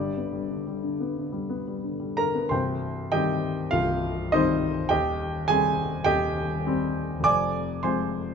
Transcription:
0.00 1.14 G1 soft
0.00 1.14 G2 medium
0.00 0.28 G3 soft
0.00 1.80 G4 medium
0.00 1.84 D5 medium
0.17 0.45 B3 soft
0.33 0.61 G3 soft
0.50 0.78 D3 soft
0.67 0.94 G3 soft
0.83 1.11 D3 soft
1.00 1.28 B3 soft
1.18 1.45 D3 soft
1.32 1.61 G3 soft
1.50 1.78 B3 soft
1.68 1.95 G3 soft
1.84 2.11 D3 soft
2.00 2.28 G3 soft
2.17 2.45 D3 soft
2.17 2.49 A#4 medium
2.17 2.51 A#5 loud
2.35 2.51 B3 soft
2.49 3.69 C1 medium
2.49 3.69 C2 medium
2.49 3.09 C5 medium
2.49 3.09 G5 medium
2.49 3.12 C6 medium
3.12 3.69 D#3 medium
3.12 3.69 G3 soft
3.12 3.70 C4 medium
3.12 3.69 G4 medium
3.12 3.69 D#5 medium
3.12 3.72 G5 loud
3.71 4.87 C1 medium
3.71 4.87 C2 medium
3.71 4.28 F4 medium
3.71 4.32 F5 loud
4.32 4.88 D#3 medium
4.32 4.88 G3 medium
4.32 4.88 C4 medium
4.32 4.87 D#4 medium
4.32 4.88 C5 medium
4.32 4.89 D#5 loud
4.89 6.04 D#1 medium
4.89 6.04 D#2 medium
4.89 5.45 G4 medium
4.89 5.45 D#5 medium
4.89 5.48 G5 loud
5.48 6.03 G3 medium
5.48 6.04 C4 medium
5.48 6.03 G#4 medium
5.48 6.07 G#5 loud
6.04 7.20 D#1 medium
6.04 7.20 D#2 medium
6.04 6.61 G4 medium
6.04 6.62 D#5 medium
6.04 6.65 G5 loud
6.66 7.21 G3 medium
6.66 7.21 C4 medium
7.20 8.34 F1 medium
7.24 8.34 F2 medium
7.24 7.79 D5 medium
7.24 7.78 G#5 medium
7.24 7.82 D6 loud
7.83 8.34 F3 soft
7.83 8.34 G#3 medium
7.83 8.34 C4 medium
7.83 8.34 C5 medium
7.83 8.34 G#5 medium
7.83 8.34 C6 medium

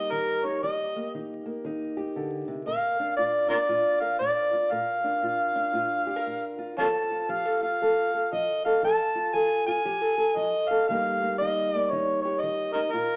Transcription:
0.00 0.60 G3 medium
0.00 0.96 A#3 medium
0.00 0.43 D#4 medium
0.00 0.63 G4 medium
0.00 0.13 D#5 loud
0.11 0.58 D#3 medium
0.11 0.46 A#4 medium
0.44 0.60 D#4 medium
0.44 0.62 C#5 medium
0.63 1.09 D#3 medium
0.63 1.96 G4 medium
0.63 1.10 D#5 medium
0.96 1.45 A#3 soft
1.14 1.61 D#3 medium
1.14 1.64 D#4 medium
1.46 2.99 A#3 medium
1.65 2.11 D#3 medium
1.65 2.64 D#4 medium
1.97 2.66 G4 medium
2.16 2.47 D3 medium
2.48 2.66 C3 medium
2.66 3.13 A#2 medium
2.66 4.00 A#4 medium
2.66 3.14 F5 loud
2.99 3.49 D4 medium
3.17 3.65 A#2 medium
3.17 3.69 F4 medium
3.17 3.47 D5 medium
3.49 4.69 D4 medium
3.49 3.56 F4 medium
3.49 3.57 A#4 medium
3.49 3.97 D5 loud
3.69 4.16 A#2 medium
3.69 4.52 F4 medium
4.00 4.69 A#4 medium
4.00 4.18 F5 medium
4.19 4.67 A#2 medium
4.19 4.73 D5 medium
4.53 5.23 F4 medium
4.71 5.19 A#2 medium
4.71 6.06 A#4 medium
4.71 6.58 F5 medium
5.04 5.54 D4 soft
5.22 5.70 A#2 medium
5.22 5.74 F4 medium
5.56 6.75 D4 medium
5.73 6.21 A#2 medium
5.73 6.58 F4 medium
6.07 6.16 G4 medium
6.16 6.77 A#4 medium
6.26 6.73 A#2 medium
6.58 6.79 F4 medium
6.78 7.25 F3 medium
6.78 8.81 C4 medium
6.78 7.11 F4 medium
6.78 7.29 A4 medium
6.78 6.87 C#5 medium
6.78 6.87 F5 medium
6.78 7.31 A5 medium
7.12 7.62 F4 medium
7.29 7.76 F3 medium
7.29 7.46 G4 medium
7.29 7.61 F5 loud
7.46 7.80 A4 soft
7.63 8.81 F4 medium
7.63 8.28 F5 loud
7.82 8.28 F3 medium
7.82 8.13 A4 medium
8.14 8.64 A4 medium
8.33 8.79 F3 medium
8.33 8.62 D#5 loud
8.65 8.81 A4 medium
8.65 8.82 F5 medium
8.83 9.30 F3 medium
8.83 9.33 A4 medium
8.83 9.36 A5 loud
9.15 9.66 F4 medium
9.34 9.81 F3 medium
9.34 9.85 A4 medium
9.34 9.66 G#5 loud
9.67 10.86 F4 medium
9.67 10.38 G#5 loud
9.85 10.33 F3 medium
9.85 10.02 G4 medium
10.02 10.17 A4 soft
10.18 10.69 A4 medium
10.36 10.84 F3 medium
10.36 10.70 D#5 loud
10.68 10.87 A4 medium
10.68 10.87 F5 loud
10.88 11.36 D#3 medium
10.88 12.91 G3 medium
10.88 11.21 A#3 medium
10.88 11.40 D#4 medium
10.88 12.24 G4 medium
10.88 11.35 F5 medium
11.22 11.72 A#3 medium
11.38 11.87 D#3 medium
11.38 11.91 D#4 medium
11.38 11.73 D#5 medium
11.73 13.16 A#3 medium
11.73 11.91 D5 medium
11.90 12.38 D#3 medium
11.90 12.74 D#4 medium
11.90 12.21 C#5 medium
12.22 12.94 G4 medium
12.22 12.42 C#5 medium
12.40 12.89 D#3 medium
12.40 12.72 D#5 medium
12.73 12.91 D#4 medium
12.73 12.81 A#4 medium
12.73 12.93 D#5 medium
12.92 13.16 A#2 medium
12.92 13.16 F4 medium
12.92 13.16 A#4 medium

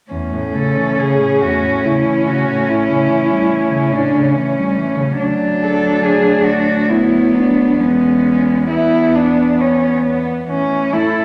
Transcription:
0.10 0.34 E2 soft
0.10 5.15 A2 soft
0.10 5.15 C#4 soft
0.33 0.56 A2 soft
0.54 0.79 C#3 soft
0.54 1.01 A4 medium
0.77 0.99 E3 soft
0.98 1.21 C#3 soft
0.98 1.43 G#4 medium
1.20 1.43 A2 soft
1.41 1.64 E2 soft
1.41 1.85 F#4 medium
1.63 1.86 A2 soft
1.84 2.06 C#3 soft
1.84 2.28 E4 soft
2.04 2.27 E3 soft
2.26 2.48 C#3 soft
2.26 2.70 F#4 medium
2.47 2.67 A2 soft
2.67 2.90 A2 soft
2.67 3.95 E4 medium
2.89 3.10 C#3 soft
3.09 3.31 E3 soft
3.30 3.52 G3 soft
3.51 3.72 E3 soft
3.71 3.95 C#3 soft
3.93 4.15 A2 soft
3.93 4.36 D4 medium
4.14 4.37 C#3 soft
4.36 4.59 E3 soft
4.36 5.18 C#4 medium
4.58 4.78 G3 soft
4.77 4.98 E3 soft
4.97 5.18 C#3 soft
5.19 7.76 D2 soft
5.19 6.85 F#3 medium
5.19 6.92 D4 soft
5.62 6.04 A4 medium
6.02 6.46 G#4 medium
6.45 6.91 F#4 medium
6.89 7.81 F#3 soft
6.89 7.79 B3 soft
6.89 7.37 E4 medium
7.36 7.81 D4 soft
7.79 10.25 E2 soft
7.79 8.69 G#3 soft
7.79 8.69 B3 soft
7.79 8.71 C#4 medium
8.70 9.60 B3 soft
8.70 10.26 B3 soft
8.70 9.17 E4 soft
9.15 9.62 D4 soft
9.61 10.05 C#4 soft
10.05 10.48 B3 soft
10.48 11.25 A2 soft
10.48 10.94 E3 soft
10.48 10.94 C#4 soft
10.93 11.25 A3 soft
10.93 11.25 E4 soft
10.93 11.25 A4 medium

